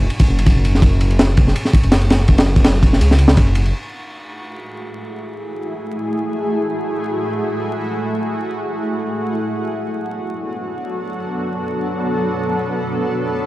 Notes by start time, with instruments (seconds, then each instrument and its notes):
0.10 ride
0.20 kick, ride
0.28 detuned saw bass F#1
0.38 ride
0.46 kick, ride
0.65 ride
0.75 snare
0.82 detuned saw bass F#1, kick, ride
1.01 ride
1.11 ride
1.19 snare, ride
1.37 kick, ride
1.48 snare
1.56 ride
1.65 snare
1.73 kick, ride
1.83 detuned saw bass F#1, ride
1.92 snare, ride
2.01 ride
2.10 snare, ride
2.28 detuned saw bass F#1, kick, ride
2.38 snare, ride
2.56 kick, ride
2.64 snare, ride
2.83 kick, ride
2.93 snare
3.01 detuned saw bass C#2, ride
3.11 snare
3.19 ride
3.28 snare
3.37 detuned saw bass F#1, kick, ride
3.55 ride
3.65 ride
3.73 ambient pad A3 E4 F#4 G#4
9.55 ambient pad F#3 B3 D4 A4